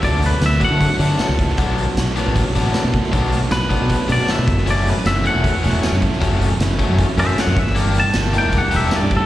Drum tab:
HH |x-x-x-x-x-x-x-x-|x-x-x-x-x-x-x-x-|x-x-x-x-x-x-x-x-|x-x-x-x-x-x-x-x-|
TB |----x-------x---|----x-------x---|----x-------x---|----x-------x---|
SD |----o-------o--o|----o-------o--o|----o-------o--o|----o-------o--o|
BD |o-----o-o-----o-|o-------o-----o-|o-----o-o-----o-|--------o-----o-|

HH |x-x-x-x-x-x-x-x-|x-x-x-x-x-x-x-x-|
TB |----x-------x---|----x-------x---|
SD |----o-------o--o|----o-------o---|
BD |o-----o-o-----o-|--------o-----o-|